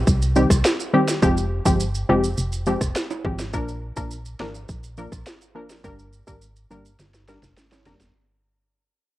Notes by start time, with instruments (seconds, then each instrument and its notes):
0.07 fm bass C2, kick, closed hi-hat, maracas
0.22 maracas
0.36 synth stab D#3 G3 C4 G4, maracas
0.50 fm bass C2, kick, cross-stick, maracas
0.65 finger snap, snare, closed hi-hat, maracas
0.80 maracas
0.93 synth stab D#3 G3 C4 G4
1.08 snare, maracas
1.22 fm bass F1, synth stab F3 G#3 C4 G4, kick, closed hi-hat, maracas
1.37 maracas
1.65 fm bass G1, synth stab F3 G#3 C4 G4, kick, maracas
1.80 closed hi-hat, maracas
1.95 maracas
2.09 fm bass F1, synth stab F3 G#3 C4 G4
2.24 maracas
2.38 fm bass F1, closed hi-hat, maracas
2.52 maracas
2.66 synth stab F3 G#3 C4 G4, maracas
2.81 fm bass F1, kick, cross-stick, maracas
2.96 finger snap, snare, closed hi-hat, maracas
3.11 high timbale, maracas
3.25 fm bass G#1, synth stab F3 G#3 C4 G4, kick
3.39 snare, maracas
3.53 fm bass A#1, synth stab F3 A#3 D4 A#4, kick, closed hi-hat, maracas
3.68 maracas
3.96 fm bass A#1, synth stab F3 A#3 D4 A#4, kick, maracas
4.11 closed hi-hat, maracas
4.25 maracas
4.40 fm bass G#1, synth stab F3 A#3 D4 A#4, finger snap, snare
4.55 maracas
4.69 fm bass A#1, kick, closed hi-hat, maracas
4.83 maracas
4.97 synth stab F3 A#3 D4 A#4, maracas
5.12 fm bass A#1, kick, cross-stick, maracas
5.26 finger snap, snare, closed hi-hat, maracas
5.41 maracas
5.55 synth stab F3 A#3 D4 A#4
5.69 snare, maracas
5.84 fm bass G1, synth stab G3 A#3 D4 A#4, kick, closed hi-hat, maracas
5.99 maracas
6.13 maracas
6.27 fm bass G#1, synth stab G3 A#3 D4 A#4, kick, maracas
6.42 closed hi-hat, maracas
6.56 maracas
6.71 fm bass G1, synth stab G3 A#3 D4 A#4, maracas
6.85 maracas
6.99 fm bass G1, snare, closed hi-hat, maracas
7.14 snare, maracas
7.28 synth stab G3 A#3 D4 A#4, snare, maracas
7.43 fm bass F1, snare, maracas
7.57 snare, closed hi-hat, maracas
7.72 snare, high timbale, maracas
7.86 fm bass F1, synth stab G3 A#3 D4 A#4, snare, maracas
8.00 snare, maracas